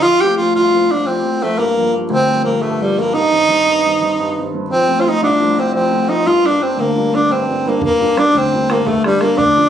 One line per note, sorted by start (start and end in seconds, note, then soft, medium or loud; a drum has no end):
0.02 1.04 F2 medium
0.02 0.22 F4 loud
0.21 0.37 F3 soft
0.21 0.37 A3 soft
0.21 0.38 C4 soft
0.21 0.36 G4 medium
0.37 0.71 F3 soft
0.37 0.72 A3 soft
0.37 0.72 C4 soft
0.37 0.53 F4 medium
0.55 1.56 C2 medium
0.55 0.93 F4 medium
0.73 0.88 F3 soft
0.73 0.89 A3 soft
0.73 0.88 C4 soft
0.90 1.22 F3 soft
0.90 1.23 A3 soft
0.90 1.23 C4 soft
0.90 1.08 D4 medium
1.06 1.56 F2 medium
1.06 1.44 C4 medium
1.24 1.39 F3 soft
1.24 1.40 A3 soft
1.24 1.40 C4 soft
1.41 1.57 F3 soft
1.41 1.58 A3 soft
1.41 1.60 A3 medium
1.41 1.58 C4 soft
1.58 2.61 G2 medium
1.58 1.94 A#3 medium
1.77 1.92 F3 soft
1.77 1.92 G3 soft
1.77 1.93 A#3 medium
1.93 2.27 F3 soft
1.93 2.28 G3 soft
1.93 2.28 A#3 medium
2.10 3.11 D2 medium
2.10 2.44 C4 medium
2.29 2.43 F3 soft
2.29 2.44 G3 soft
2.29 2.44 A#3 medium
2.44 2.79 F3 soft
2.44 2.80 G3 soft
2.44 2.64 A#3 medium
2.44 2.80 A#3 soft
2.62 3.13 G2 medium
2.62 2.83 A3 medium
2.81 2.96 F3 soft
2.81 2.96 G3 soft
2.81 3.01 G3 medium
2.81 2.97 A#3 soft
2.97 3.14 F3 soft
2.97 3.14 G3 soft
2.97 3.14 A#3 medium
2.97 3.15 A#3 medium
3.14 3.65 G2 medium
3.14 4.53 D#4 loud
3.33 3.47 D#3 soft
3.33 3.47 G3 soft
3.33 3.47 C4 soft
3.48 3.83 D#3 soft
3.48 3.83 G3 soft
3.48 3.83 C4 medium
3.67 4.18 G2 medium
3.85 3.99 D#3 soft
3.85 3.99 G3 soft
3.85 4.00 C4 soft
4.01 4.35 D#3 soft
4.01 4.35 G3 soft
4.01 4.35 C4 medium
4.20 4.69 G2 medium
4.38 4.52 D#3 soft
4.38 4.53 G3 soft
4.38 4.53 C4 soft
4.53 4.70 D#3 soft
4.53 4.70 G3 soft
4.53 4.70 C4 medium
4.70 5.73 F2 medium
4.70 5.02 C4 medium
4.87 5.04 F3 soft
4.87 5.04 A3 soft
4.87 5.05 C4 medium
5.01 5.10 F4 medium
5.05 5.38 F3 medium
5.05 5.39 A3 soft
5.05 5.39 C4 medium
5.05 5.23 D#4 medium
5.22 6.23 C2 medium
5.22 5.61 D4 medium
5.40 5.55 F3 soft
5.40 5.55 A3 medium
5.40 5.55 C4 medium
5.56 5.90 F3 soft
5.56 5.90 A3 soft
5.56 5.91 C4 soft
5.56 5.74 C4 medium
5.75 6.25 F2 medium
5.75 6.10 C4 medium
5.91 6.07 F3 soft
5.91 6.07 A3 soft
5.91 6.08 C4 soft
6.09 6.25 F3 soft
6.09 6.26 A3 soft
6.09 6.26 C4 medium
6.09 6.28 D#4 medium
6.26 7.29 G2 medium
6.26 6.48 F4 medium
6.43 6.58 G3 soft
6.43 6.59 A#3 soft
6.43 6.58 D4 soft
6.43 6.64 D4 medium
6.60 6.94 G3 soft
6.60 6.94 A#3 soft
6.60 6.81 C4 medium
6.60 6.94 D4 medium
6.77 7.78 D2 medium
6.77 7.16 A#3 medium
6.95 7.11 G3 soft
6.95 7.11 A#3 soft
6.95 7.12 D4 medium
7.13 7.47 G3 soft
7.13 7.47 A#3 soft
7.13 7.47 D4 soft
7.13 7.33 D4 medium
7.31 7.80 G2 medium
7.31 7.70 C4 medium
7.49 7.64 G3 soft
7.49 7.65 A#3 soft
7.49 7.65 D4 soft
7.65 7.82 G3 soft
7.65 7.82 A#3 soft
7.65 7.83 A#3 medium
7.65 7.82 D4 medium
7.81 8.85 G2 medium
7.81 8.19 A#3 medium
7.81 bodhran medium
8.00 8.15 G3 soft
8.00 8.15 A#3 soft
8.00 8.16 D4 medium
8.00 bodhran soft
8.17 8.51 G3 medium
8.17 8.51 A#3 soft
8.17 8.51 D4 soft
8.17 8.39 D4 medium
8.17 bodhran medium
8.34 9.35 D2 medium
8.34 8.72 C4 medium
8.34 bodhran medium
8.53 8.68 G3 soft
8.53 8.68 A#3 soft
8.53 8.68 D4 soft
8.53 bodhran soft
8.69 9.03 G3 soft
8.69 9.03 A#3 soft
8.69 8.89 A#3 medium
8.69 9.03 D4 soft
8.69 bodhran medium
8.79 bodhran soft
8.86 9.36 G2 medium
8.86 9.04 A3 medium
8.86 bodhran medium
9.04 9.19 G3 soft
9.04 9.23 G3 medium
9.04 9.20 A#3 soft
9.04 9.21 D4 soft
9.04 bodhran medium
9.21 9.37 G3 soft
9.21 9.37 A#3 soft
9.21 9.39 A#3 medium
9.21 9.38 D4 medium
9.21 bodhran soft
9.38 9.69 D2 medium
9.38 9.69 D4 loud
9.38 bodhran medium
9.56 9.69 F3 soft
9.56 9.69 A3 soft
9.56 9.69 D4 medium
9.56 bodhran soft